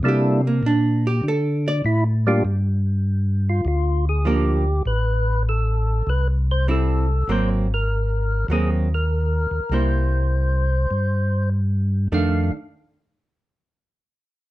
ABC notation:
X:1
M:4/4
L:1/8
Q:"Swing" 1/4=99
K:Cdor
V:1 name="Tonewheel organ"
[G,B,D=EA] z4 z E [G,B,DFG] | z3 F F _A G2 | =B2 A2 B c A2 | c B3 _A B3 |
c6 z2 | f z6 z |]
V:2 name="Hollow-body jazz guitar"
G B, D G A d z2 | z6 [F,B,D] z | z6 [G,C=E] z | [_G,B,C] z3 [G,B,C] z3 |
[G,B,=E]3 z4 z | [E,A,D] z6 z |]
V:3 name="Tonewheel organ" clef=bass
C,2 B,,2 D,2 A,,2 | G,,4 D,,4 | A,,,4 C,,4 | _A,,,4 E,,3 E,, |
C,,4 G,,4 | F,, z6 z |]